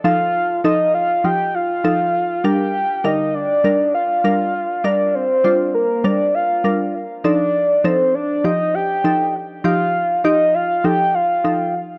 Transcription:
<<
  \new Staff \with { instrumentName = "Soft synth lead" } { \time 4/4 \key f \mixolydian \tempo 4 = 100 f''4 ees''8 f''8 g''8 f''4. | g''4 ees''8 d''4 f''4. | d''8 c''4 bes'8 d''8 f''4 r8 | d''4 c''8 d''8 ees''8 g''4 r8 |
f''4 ees''8 f''8 g''8 f''4 r8 | }
  \new Staff \with { instrumentName = "Synth pluck" } { \time 4/4 \key f \mixolydian <f ees' a'>8 r8 <f ees' a'>8 r8 <f ees' f'>8 r8 <f ees' a'>8 r8 | <g d' bes'>8 r8 <d g bes'>8 r8 <g d' bes'>8 r8 <g d' bes'>8 r8 | <g d' bes'>8 r8 <g d' f'>8 r8 <g d' bes'>8 r8 <g d' bes'>8 r8 | <f ees' a'>8 r8 <f ees' a'>8 r8 <f ees' g'>8 r8 <f ees' a'>8 r8 |
<f ees' g'>8 r8 <f ees' g'>8 r8 <f ees' a'>8 r8 <f ees' a'>8 r8 | }
>>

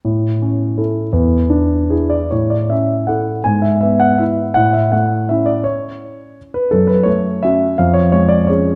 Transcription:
\new Staff \with { instrumentName = "Grand piano" } { \time 3/4 \key a \major \tempo 4 = 166 << { r2. | r2 r8 d''8 | cis''8 d''8 e''4 fis''4 | gis''8 e''8 e''8 fis''8 e''4 |
fis''8 e''8 fis''4 e''8 d''8 | cis''2 r8 b'8 | a'8 b'8 cis''4 e''4 | eis''8 cis''8 cis''8 d''8 cis''4 | } \\ { a,4 cis'4 <e' a'>4 | e,4 d'4 <e' gis'>4 | a,4 cis'4 <e' a'>4 | gis,4 b4 e'4 |
a,4 a4 <cis' e'>4~ | <cis' e'>2. | fis,4 a4 <cis' fis'>4 | eis,4 gis4 <cis' gis'>4 | } >> }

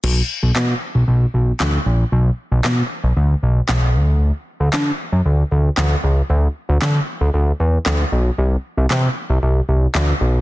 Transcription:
<<
  \new Staff \with { instrumentName = "Analog synth bass" } { \clef bass \time 4/4 \key b \phrygian \tempo 4 = 115 b,,8 r16 b,,16 b,8 r16 b,,16 b,,8 b,,8 d,8 bes,,8 | b,,8 r16 b,,16 b,8 r16 b,,16 d,8 b,,8 b,,8 d,8~ | d,8 r16 d,16 d8 r16 fis,16 d,8 d,8 d,8 cis,8 | d,8 r16 d,16 d8 r16 d,16 d,8 e,8 d,8 b,,8 |
c,8 r16 c,16 c8 r16 c,16 c,8 c,8 d,8 b,,8 | }
  \new DrumStaff \with { instrumentName = "Drums" } \drummode { \time 4/4 cymc4 <hc sn>4 r4 <hc sn>4 | r4 <hc sn>4 r4 <hc sn>4 | r4 <hc sn>4 r4 <hc sn>4 | r4 <hc sn>4 r4 <hc sn>4 |
r4 <hc sn>4 r4 <hc sn>4 | }
>>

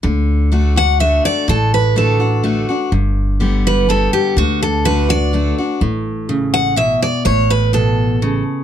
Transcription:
<<
  \new Staff \with { instrumentName = "Steel-string acoustic guitar" } { \time 3/4 \key d \major \tempo 4 = 125 r4. fis''8 e''8 d''8 | a'8 b'8 a'4. r8 | r4. b'8 a'8 g'8 | fis'8 a'8 b'8 d''4 r8 |
r4. fis''8 e''8 d''8 | cis''8 b'8 a'4. r8 | }
  \new Staff \with { instrumentName = "Steel-string acoustic guitar" } { \time 3/4 \key d \major << { r4 <d a d' fis'>8 <d' fis'>8 <d a d' fis'>4 | r4 <d a d' fis'>8 <d' fis'>8 <d a d' fis'>8 <d' fis'>8 | r4 <d g b g'>4 <d g b g'>4 | r4 <d a d' fis'>8 <d' fis'>8 <d a d' fis'>8 <d' fis'>8 |
r2. | r2. | } \\ { d2 r4 | a,2 r4 | g,2 r4 | d2 r4 |
a,4 cis4 b,4 | a,4 b,4 cis4 | } >> }
  \new Staff \with { instrumentName = "Upright bass" } { \clef bass \time 3/4 \key d \major d,2. | a,,2. | g,,2. | d,2. |
a,,2. | a,,2. | }
>>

